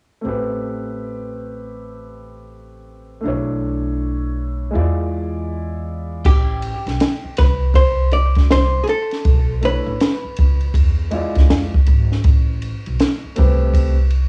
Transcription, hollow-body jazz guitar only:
6.26 G4
7.38 B4
7.76 C5
8.13 D5
8.52 C5
8.84 G#4
8.89 A4
9.65 B4

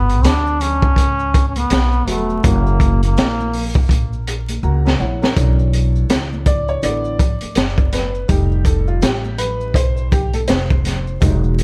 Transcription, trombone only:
Already playing: B3
0.25 D4
0.61 C#4
1.49 C#4
1.57 B3
2.08 A3
2.45 A#3
3.05 A#3

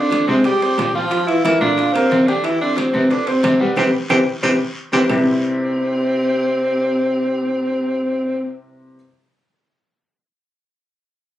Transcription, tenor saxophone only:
Already playing: D4
0.28 C4
0.45 G4
0.95 F4
1.27 E4
1.44 E4
1.61 D4
1.93 C4
2.27 D4
2.44 E4
2.61 D4
2.77 C4
3.11 D4
3.28 C4
3.60 B3
3.77 C4
4.10 C4
4.43 C4
4.93 C4
5.10 C4

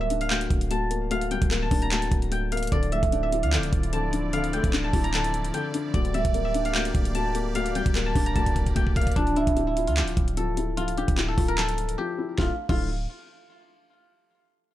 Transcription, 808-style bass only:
Already playing: D1
0.51 D1
1.42 D1
1.71 D1
2.12 D1
2.72 D1
3.03 D1
3.43 D2
3.58 D1
3.73 D1
4.64 D1
4.93 D1
5.94 D1
6.25 D1
6.95 D1
7.86 D1
8.15 D1
8.36 D1
9.16 D1
9.47 D1
9.87 D2
10.02 D1
10.17 D1
11.08 D1
11.38 D1
12.38 D1
12.69 D1

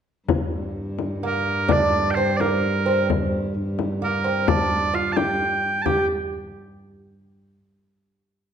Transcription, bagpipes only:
1.26 A#4
1.72 D5
2.11 G5
2.15 C5
2.37 A#4 D5
4.04 A#4
4.48 D5
4.95 F5
5.12 A5
5.17 G5
5.82 G5 A5

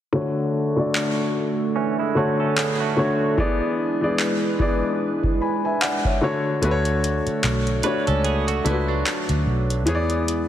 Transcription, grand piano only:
0.13 D3 A3 F#4 C#5
0.76 D3 A3 F#4 D5
2.15 D3 A3 F#4 C#5
2.96 D3 A3 F#4 C#5
3.37 E3 B3 G#4 D5
4.01 E3 B3 G#4 D5
4.59 E3 B3 G#4 D5
5.41 G#5 B5
5.65 E5 G#5
5.82 D5 F#5
6.05 C#5 E5
6.21 D3 A3 F#4 C#5
6.62 D3 A3 F#4 B4
6.71 C#5
7.83 A3 D4 F#4 C#5
8.64 A3 D4 F4 B4
8.73 F#4
9.86 E3 B3 G#4 C#5
9.95 D5

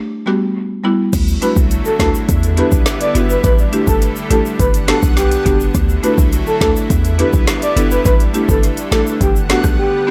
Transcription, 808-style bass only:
1.13 D2
1.56 C2
2.00 D2
2.29 E2
2.72 B1
3.15 G1
3.44 A1
3.87 G1
4.30 A1
4.60 G1
5.03 B1
5.46 F#1
5.75 D2
6.18 C2
6.61 D2
6.90 E2
7.34 B1
7.76 G1
8.05 A1
8.49 G1
8.92 A1
9.21 G1
9.64 B1

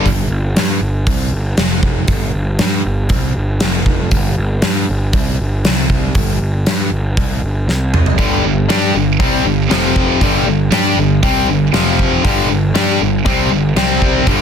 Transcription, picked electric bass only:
0.06 G1
0.30 G1
0.56 G2
0.81 G1
1.07 C2
1.32 G1
1.57 F1
2.08 G1
2.34 G1
2.59 G2
2.86 G1
3.09 C2
3.36 G1
3.62 F1
4.12 G1
4.38 G1
4.63 G2
4.89 G1
5.14 C2
5.40 G1
5.66 C2
6.15 G1
6.41 G1
6.67 G2
6.91 G1
7.17 C2
7.42 G1
7.67 C2
8.18 G1
8.44 G1
8.70 G2
8.95 G1
9.20 C2
9.45 G1
9.71 F1
10.21 G1
10.46 G1
10.71 G2
10.97 G1
11.23 C2
11.49 G1
11.72 F1
12.25 G1
12.49 G1
12.75 G2
13.01 G1
13.25 C2
13.52 G1
13.76 C2
14.27 G1

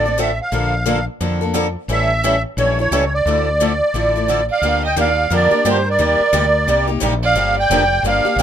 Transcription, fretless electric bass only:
Already playing: A1
0.52 A#1
1.20 F2
1.88 A1
2.57 A#1
2.91 C#2
3.26 D2
3.94 A1
4.61 D2
4.96 D#2
5.30 F2
5.52 muted fretless electric bass stroke
5.65 G2
5.99 D#2
6.20 muted fretless electric bass stroke
6.33 D2
6.67 C2
7.02 A#1
7.36 G1
7.70 F1
8.03 G1
8.25 muted fretless electric bass stroke
8.36 A1

